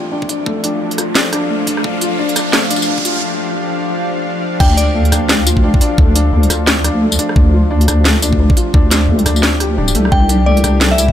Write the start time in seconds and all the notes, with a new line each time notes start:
Already playing: F3 A3 C4 D4 F4 A4 F5, riser
0.12 D4
0.22 kick
0.29 D4, closed hi-hat
0.46 A3, kick
0.64 D4, closed hi-hat
0.81 D4
0.91 closed hi-hat
0.98 F4, cross-stick, closed hi-hat
1.15 D4, snare
1.33 D4, cross-stick, closed hi-hat
1.50 A3
1.67 D4, kick, closed hi-hat
1.77 cross-stick
1.84 D4, kick
2.01 F4, closed hi-hat
2.19 D4
2.29 G4, closed hi-hat
2.36 D4, cross-stick, closed hi-hat, tambourine
2.53 A3, snare
2.71 D4, closed hi-hat, tambourine
2.76 tambourine
2.82 tambourine
2.88 D4
2.98 kick
3.05 F4, closed hi-hat
4.60 D2 D4 G5, kick, crash
4.77 D4 D5, closed hi-hat
4.95 A3 A4
5.05 closed hi-hat
5.12 D2 D4, cross-stick, closed hi-hat, tambourine
5.29 D4, snare
5.46 F4, closed hi-hat, tambourine
5.57 kick
5.64 D4
5.74 kick
5.81 D4, closed hi-hat
5.98 D2 A3, kick
6.15 D4, closed hi-hat
6.33 D2 D4
6.43 closed hi-hat
6.50 F4, cross-stick, closed hi-hat, tambourine
6.67 D4, snare
6.84 D4, cross-stick, closed hi-hat
7.02 A3
7.12 tambourine
7.19 D4, closed hi-hat
7.29 cross-stick
7.36 D2 D4, kick
7.54 F4
7.69 D4 G4
7.81 closed hi-hat
7.88 D2 D4, cross-stick, closed hi-hat, tambourine
8.05 A3, snare
8.22 D4, closed hi-hat, tambourine
8.33 kick
8.40 D4
8.50 kick
8.57 F4, closed hi-hat
8.74 D2 D4, kick
8.91 D4, snare, closed hi-hat, tambourine
9.09 D2 A3
9.19 closed hi-hat
9.26 D2 D4, cross-stick, closed hi-hat, tambourine
9.36 tambourine
9.43 D4, snare
9.60 G4, cross-stick, closed hi-hat
9.78 D1 D4
9.88 tambourine
9.95 C2 A3, closed hi-hat
10.05 cross-stick
10.12 C2 E3 D4 G5, kick
10.29 D4, closed hi-hat
10.41 C4
10.46 A3 D5
10.57 closed hi-hat
10.64 C2 D4, cross-stick, closed hi-hat, tambourine
10.81 A4, snare
10.91 E5
10.98 E4, closed hi-hat, tambourine
11.08 kick